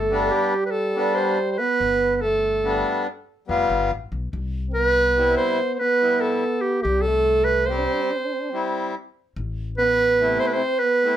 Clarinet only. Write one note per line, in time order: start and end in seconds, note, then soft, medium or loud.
0.00 0.30 A4 medium
0.30 0.64 G4 medium
0.66 0.73 B4 medium
0.71 1.16 A4 loud
1.15 1.51 C5 medium
1.51 1.59 C5 medium
1.57 2.16 B4 loud
2.16 2.23 B4 medium
2.21 3.06 A4 medium
4.74 5.33 B4 loud
5.37 5.74 C5 loud
5.74 5.81 C5 medium
5.79 6.22 B4 loud
6.21 6.63 A4 medium
6.61 6.82 G4 medium
6.82 7.03 G4 medium
7.02 7.46 A4 medium
7.45 7.67 B4 medium
7.66 8.93 C5 medium
9.78 10.41 B4 loud
10.39 10.48 C5 loud
10.47 10.55 B4 medium
10.53 10.80 C5 medium
10.79 11.17 B4 loud